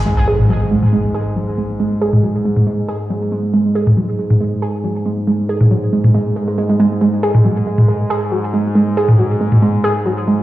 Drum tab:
T2 |---o---o--------|---o---o--------|---o---o--------|---o---o--------|

T2 |---o---o--------|---o---o--------|